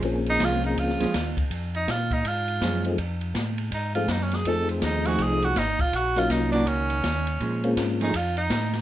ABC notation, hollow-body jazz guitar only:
X:1
M:4/4
L:1/8
Q:"Swing" 1/4=163
K:Bbm
V:1 name="Hollow-body jazz guitar"
z2 [F,A,D] z2 [F,A,D] z2 | z6 [F,A,D] z | z8 | z3 [F,=A,E^G]3 z2 |
z3 [E,B,DG]3 z2 | [F,A,D] z2 [F,=A,E_A] z4 |]